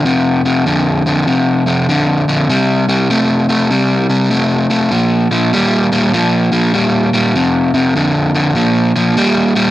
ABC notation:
X:1
M:4/4
L:1/8
Q:"Swing" 1/4=99
K:F
V:1 name="Overdriven electric guitar" clef=bass
[F,,C,] [F,,C,] [F,,D,] [F,,D,] [F,,C,] [F,,C,] [F,,D,] [F,,D,] | [C,G,] [C,G,] [C,A,] [C,A,] [C,G,] [C,G,] [C,A,] [C,A,] | [B,,F,] [B,,F,] [B,,G,] [B,,G,] [B,,F,] [B,,F,] [B,,G,] [B,,G,] | [F,,C,] [F,,C,] [F,,D,] [F,,D,] [B,,F,] [B,,F,] [B,,G,] [B,,G,] |]